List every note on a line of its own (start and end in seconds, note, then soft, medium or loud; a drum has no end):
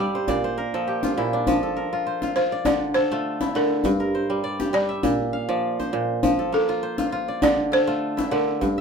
0.00 0.33 G2 medium
0.00 0.33 G3 medium
0.00 0.34 A3 medium
0.00 0.28 D5 medium
0.00 0.80 E5 medium
0.00 0.68 F5 medium
0.00 0.48 G5 medium
0.15 0.44 C5 medium
0.28 1.16 A#2 medium
0.28 1.39 D5 medium
0.28 djembe slap soft
0.28 djembe bass medium
0.44 1.63 C5 medium
0.57 1.69 A#4 medium
0.57 djembe slap soft
0.74 1.46 F3 medium
0.74 1.23 A4 medium
0.87 2.29 G4 medium
0.87 djembe slap soft
1.03 1.92 F4 medium
1.03 djembe slap medium
1.03 djembe tone medium
1.17 1.52 A#2 medium
1.17 1.53 E4 medium
1.33 3.01 D4 medium
1.33 djembe slap soft
1.47 2.71 F3 medium
1.47 djembe bass medium
1.63 2.95 A4 medium
1.77 3.02 A#4 medium
1.93 2.23 F4 medium
2.07 3.25 C5 medium
2.22 2.36 F4 medium
2.22 djembe slap soft
2.22 djembe tone soft
2.36 3.11 F4 medium
2.36 2.66 C5 medium
2.36 djembe slap soft
2.52 3.63 D5 medium
2.65 3.54 D3 medium
2.65 2.96 D5 loud
2.65 djembe bass medium
2.94 4.06 A4 medium
2.94 3.56 C5 medium
3.11 4.06 A3 medium
3.11 4.63 F4 medium
3.11 djembe slap soft
3.41 4.98 E4 medium
3.41 djembe slap soft
3.41 djembe tone soft
3.55 3.90 D3 medium
3.55 4.78 A#4 medium
3.55 djembe slap soft
3.84 5.09 G2 medium
3.84 djembe bass medium
4.00 5.27 A#4 medium
4.15 5.33 C5 medium
4.30 4.72 G3 medium
4.44 5.48 D5 medium
4.60 6.01 G4 medium
4.60 djembe slap soft
4.60 djembe tone soft
4.73 5.09 G3 medium
4.73 5.89 D5 medium
4.73 djembe slap soft
4.89 5.39 E5 medium
5.03 5.92 A#2 medium
5.03 djembe bass medium
5.33 6.33 F5 medium
5.49 6.22 F3 medium
5.49 6.59 D5 medium
5.49 djembe slap soft
5.80 6.82 C5 medium
5.80 djembe tone medium
5.93 6.28 A#2 medium
6.23 7.47 F3 medium
6.23 djembe bass medium
6.39 7.71 A4 medium
6.52 7.78 A#3 medium
6.52 7.46 A4 medium
6.69 6.98 F4 medium
6.83 8.02 C5 medium
6.98 7.12 F4 medium
6.98 djembe slap medium
6.98 djembe tone medium
7.12 7.87 F4 medium
7.12 djembe slap soft
7.28 8.39 D5 medium
7.42 8.30 D3 medium
7.42 7.74 D5 loud
7.42 djembe bass medium
7.72 8.81 A4 medium
7.72 8.34 C5 medium
7.87 8.81 A3 medium
7.87 8.81 F4 medium
7.87 djembe slap soft
8.17 8.81 E4 medium
8.17 djembe slap medium
8.17 djembe tone medium
8.31 8.67 D3 medium
8.31 8.81 A#4 medium
8.31 djembe slap soft
8.61 8.81 G2 medium
8.61 djembe slap soft
8.61 djembe bass medium
8.78 8.81 E5 medium